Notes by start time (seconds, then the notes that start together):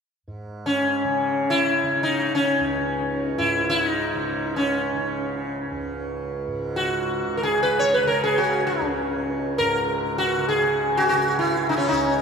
0.27 G#2
0.66 C#4
1.04 C#3
1.50 E4
1.83 C#3
2.03 D#4
2.35 C#4
2.60 C#2
3.38 G#2 E4
3.70 E4
3.85 D#4
4.14 C#3
4.56 C#4
4.93 C#3
5.71 C#2
6.47 G#2
6.76 F#4
7.26 C#3
7.37 A#4
7.43 G#4
7.63 B4
7.79 C#5
7.94 B4
8.03 C#3
8.07 A#4
8.24 G#4
8.38 F#4
8.67 C#4
8.80 C#2
9.58 G#2 A#4
10.18 F#4
10.38 C#3
10.49 G#4
10.97 F#4
11.09 F#4
11.14 C#3
11.39 E4
11.69 D#4
11.77 C#4 E4
11.88 C#2 D#4